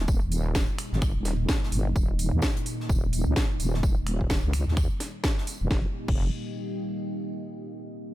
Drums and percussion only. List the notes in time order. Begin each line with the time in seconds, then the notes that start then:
0.08 kick, tambourine
0.32 open hi-hat, tambourine
0.55 kick, snare, tambourine
0.79 finger snap, open hi-hat, tambourine
0.93 snare
1.02 finger snap, kick, tambourine
1.25 snare, open hi-hat, tambourine
1.49 kick, snare, tambourine
1.63 snare
1.72 open hi-hat, tambourine
1.96 kick, tambourine
2.19 open hi-hat, tambourine
2.42 kick, snare, tambourine
2.57 closed hi-hat
2.66 open hi-hat, tambourine
2.80 snare
2.89 kick, tambourine
3.13 open hi-hat, tambourine
3.36 kick, snare, tambourine
3.60 open hi-hat, tambourine
3.74 snare
3.83 kick, tambourine
4.07 finger snap, open hi-hat
4.21 kick
4.30 kick, snare, tambourine
4.53 finger snap, open hi-hat, tambourine
4.68 snare
4.77 finger snap, kick, tambourine
5.00 snare, open hi-hat, tambourine
5.24 kick, snare, tambourine
5.38 snare
5.47 open hi-hat, tambourine
5.71 kick, snare
6.08 kick, crash